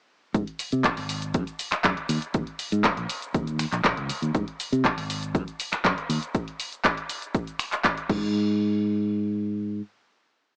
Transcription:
0.34 G#2, kick, closed hi-hat, shaker
0.47 closed hi-hat
0.59 open hi-hat, shaker
0.72 C3, closed hi-hat, shaker
0.84 kick, clap, closed hi-hat, shaker
0.97 G#1, open hi-hat
1.09 open hi-hat, shaker
1.22 closed hi-hat, shaker
1.34 F#2, kick, closed hi-hat, shaker
1.47 closed hi-hat, shaker
1.59 open hi-hat, shaker
1.72 finger snap, muted fingered electric bass stroke, clap, closed hi-hat, shaker
1.84 F#2, kick, clap, closed hi-hat, shaker
1.97 closed hi-hat
2.09 D#2, open hi-hat, shaker
2.22 closed hi-hat, shaker
2.34 D#2, kick, closed hi-hat, shaker
2.47 closed hi-hat
2.59 open hi-hat, shaker
2.72 G#2, closed hi-hat, shaker
2.84 kick, clap, closed hi-hat, shaker
2.97 A#1, closed hi-hat
3.10 open hi-hat, shaker
3.22 closed hi-hat, shaker
3.34 D#2, kick, closed hi-hat, shaker
3.47 closed hi-hat, shaker
3.59 finger snap, open hi-hat, shaker
3.72 A#1, clap, closed hi-hat, shaker
3.85 A#1, kick, clap, closed hi-hat, shaker
3.97 C#2, closed hi-hat
4.09 muted fingered electric bass stroke, open hi-hat, shaker
4.22 D#2, closed hi-hat, shaker
4.34 G#2, kick, closed hi-hat, shaker
4.48 closed hi-hat
4.60 open hi-hat, shaker
4.72 C3, closed hi-hat, shaker
4.85 kick, clap, closed hi-hat, shaker
4.97 G#1, open hi-hat
5.10 open hi-hat, shaker
5.23 closed hi-hat, shaker
5.35 F#2, kick, closed hi-hat, shaker
5.48 closed hi-hat, shaker
5.60 open hi-hat, shaker
5.72 finger snap, muted fingered electric bass stroke, clap, closed hi-hat, shaker
5.85 F#2, kick, clap, closed hi-hat, shaker
5.98 closed hi-hat
6.09 D#2, open hi-hat, shaker
6.23 closed hi-hat, shaker
6.35 kick, closed hi-hat, shaker
6.48 closed hi-hat
6.60 open hi-hat, shaker
6.72 closed hi-hat, shaker
6.85 kick, clap, closed hi-hat, shaker
6.97 closed hi-hat
7.09 open hi-hat, shaker
7.22 closed hi-hat, shaker
7.35 kick, closed hi-hat, shaker
7.47 closed hi-hat, shaker
7.59 finger snap, open hi-hat, shaker
7.72 clap, closed hi-hat, shaker
7.84 kick, clap, closed hi-hat, shaker
7.97 closed hi-hat
8.09 G#2, kick, crash

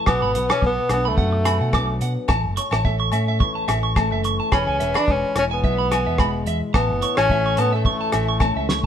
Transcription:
0.06 B1 B2 B3 F#4 D6, kick, cross-stick, low agogo
0.22 G#1 B5
0.35 B1 B4 F#5, closed hi-hat
0.50 C#4 D6, cross-stick, low agogo
0.62 B1 B3, kick
0.89 B1 B3 D4, cross-stick, closed hi-hat, low agogo
1.05 A3 B5
1.18 F#2 F#3 F#4 F#5, kick
1.32 muted clean electric guitar stroke
1.45 B5, cross-stick, closed hi-hat, low agogo
1.61 B2 F#5
1.73 B1 B3 D4 D6, kick, cross-stick, low agogo
2.01 B2 F#5, closed hi-hat
2.28 A1 A2 A5, muted nylon-string guitar stroke, kick, cross-stick, low agogo
2.44 F#1
2.57 C#5 C#6, closed hi-hat
2.71 A1 A5, cross-stick, low agogo
2.85 A3 E5, kick
3.00 C#6
3.12 A2 C#4 E5, closed hi-hat, low agogo
3.28 E5
3.40 E3 C#6, muted nylon-string guitar stroke, kick
3.55 A5
3.68 A1 E5, cross-stick, closed hi-hat, low agogo
3.83 C#6
3.96 A3 C#4 A5, kick, cross-stick, low agogo
4.12 F#1 E5
4.24 C#6, closed hi-hat
4.40 A5
4.52 E1 E3 C#4 G#4 B5, kick, cross-stick, low agogo
4.67 C#2 G#5
4.80 E1 B4 E5, closed hi-hat
4.94 D4 B5, cross-stick, low agogo
5.07 E1 G#3, kick
5.11 C#4
5.36 E1 C#4 E4, cross-stick, closed hi-hat, low agogo
5.51 B3 G#5
5.63 B1 B2 E5, muted nylon-string guitar stroke, kick
5.78 B5
5.92 G#5, cross-stick, closed hi-hat, low agogo
6.07 E2 E5
6.18 E1 G#3 E4 B5, kick, cross-stick, low agogo
6.46 E2 E5, closed hi-hat
6.74 A1 A2 B3 E4 A5, kick, cross-stick, low agogo
6.90 F#1
7.02 C#5 C#6, closed hi-hat
7.17 A1 C#4 A5, cross-stick, low agogo
7.30 A3 E5, kick
7.46 C#6
7.57 A2 B3 C#4 A5, closed hi-hat, low agogo
7.73 A3 E5
7.85 E3 E4 C#6, kick
8.01 A5
8.12 A1 E5, cross-stick, closed hi-hat, low agogo
8.28 C#6
8.40 A3 C#4 A5, kick, cross-stick, low agogo
8.56 C#2 E5
8.69 C#6, snare

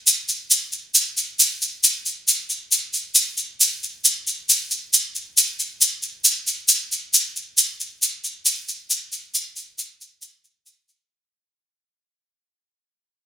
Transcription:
0.07 shaker
0.29 shaker
0.51 shaker
0.72 shaker
0.95 shaker
1.17 shaker
1.39 shaker
1.62 shaker
1.84 shaker
2.06 shaker
2.28 shaker
2.50 shaker
2.72 shaker
2.93 shaker
3.15 shaker
3.37 shaker
3.61 shaker
3.83 shaker
4.05 shaker
4.27 shaker
4.49 shaker
4.71 shaker
4.93 shaker
5.15 shaker
5.37 shaker
5.59 shaker
5.81 shaker
6.03 shaker
6.25 shaker
6.47 shaker
6.68 shaker
6.92 shaker
7.14 shaker
7.36 shaker
7.58 shaker
7.80 shaker
8.02 shaker
8.24 shaker
8.46 shaker
8.68 shaker
8.90 shaker
9.12 shaker
9.35 shaker
9.56 shaker
9.79 shaker
10.01 shaker
10.22 shaker
10.44 shaker
10.66 shaker
10.89 shaker

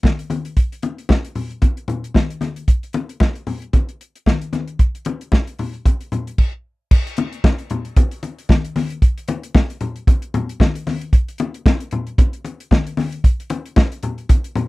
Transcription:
0.03 kick, snare, high conga
0.19 closed hi-hat
0.30 closed hi-hat, high conga
0.45 closed hi-hat
0.57 kick, closed hi-hat
0.72 closed hi-hat
0.82 closed hi-hat, muted conga
0.98 closed hi-hat
1.09 kick, snare, high conga
1.25 closed hi-hat
1.35 open hi-hat, low conga
1.51 closed hi-hat
1.62 kick, closed hi-hat, muted conga
1.77 closed hi-hat
1.88 closed hi-hat, muted conga, low conga
2.04 closed hi-hat
2.14 kick, snare, high conga
2.30 closed hi-hat
2.41 snare, closed hi-hat, high conga
2.56 closed hi-hat
2.68 kick, closed hi-hat
2.83 closed hi-hat
2.93 closed hi-hat, muted conga
3.09 closed hi-hat
3.20 kick, snare, high conga
3.35 closed hi-hat
3.47 open hi-hat, low conga
3.62 closed hi-hat
3.73 kick, closed hi-hat, muted conga
3.89 closed hi-hat
4.01 closed hi-hat
4.16 closed hi-hat
4.26 kick, snare, high conga
4.42 closed hi-hat
4.53 snare, closed hi-hat, high conga
4.68 closed hi-hat
4.79 kick, closed hi-hat
4.95 closed hi-hat
5.05 closed hi-hat, muted conga
5.21 closed hi-hat
5.32 kick, snare, high conga
5.47 closed hi-hat
5.59 open hi-hat, low conga
5.74 closed hi-hat
5.86 kick, closed hi-hat, muted conga
6.01 closed hi-hat
6.12 closed hi-hat, low conga
6.27 closed hi-hat
6.38 kick, crash
6.91 kick, crash
7.07 closed hi-hat
7.17 closed hi-hat, muted conga
7.33 closed hi-hat
7.44 kick, snare, high conga
7.59 closed hi-hat
7.70 closed hi-hat, low conga
7.85 closed hi-hat
7.96 kick, closed hi-hat, muted conga
8.11 closed hi-hat
8.23 closed hi-hat, muted conga
8.39 closed hi-hat
8.49 kick, snare, high conga
8.65 closed hi-hat
8.76 snare, open hi-hat, high conga
8.90 closed hi-hat
9.02 kick, closed hi-hat
9.18 closed hi-hat
9.28 closed hi-hat, muted conga
9.43 closed hi-hat
9.55 kick, snare, high conga
9.70 closed hi-hat
9.81 closed hi-hat, low conga
9.96 closed hi-hat
10.07 kick, closed hi-hat, muted conga
10.22 closed hi-hat
10.34 closed hi-hat, muted conga, low conga
10.49 closed hi-hat
10.60 kick, snare, high conga
10.75 closed hi-hat
10.87 snare, open hi-hat, high conga
11.01 closed hi-hat
11.13 kick, closed hi-hat
11.28 closed hi-hat
11.38 closed hi-hat, muted conga
11.54 closed hi-hat
11.66 kick, snare, high conga
11.80 closed hi-hat
11.91 closed hi-hat, low conga
12.07 closed hi-hat
12.18 kick, closed hi-hat, muted conga
12.33 closed hi-hat
12.45 closed hi-hat, muted conga
12.60 closed hi-hat
12.71 kick, snare, high conga
12.87 closed hi-hat
12.97 snare, open hi-hat, high conga
13.12 closed hi-hat
13.24 kick, closed hi-hat
13.40 closed hi-hat
13.50 closed hi-hat, muted conga
13.66 closed hi-hat
13.76 kick, snare, high conga
13.92 closed hi-hat
14.03 closed hi-hat, low conga
14.18 closed hi-hat
14.29 kick, closed hi-hat, muted conga
14.44 closed hi-hat
14.55 closed hi-hat, muted conga, low conga

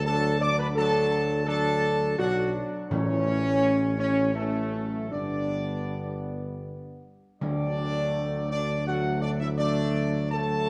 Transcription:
Already playing: D2
0.06 F#3 D4 A4 A5
0.41 D5 D6
0.59 B4 B5
0.76 F#3 D4 A4 A5
1.46 F#3 D4 A4 A5
2.18 B1 F#3 D4 F#4 F#5
2.89 A1 A2 E3 C#4 C#5
3.99 C#4 C#5
4.35 E3 A3 C#4 A4
4.74 F#3
5.12 G1 G3 B3 D4 D5
7.41 D2 D3 F#3 A3 D4 D5
8.50 D4 D5
8.87 F#3 A3 F#4 F#5
9.21 D4 D5
9.40 E4 E5
9.58 F#3 A3 D4 D5
10.31 F#3 A3 A4 A5

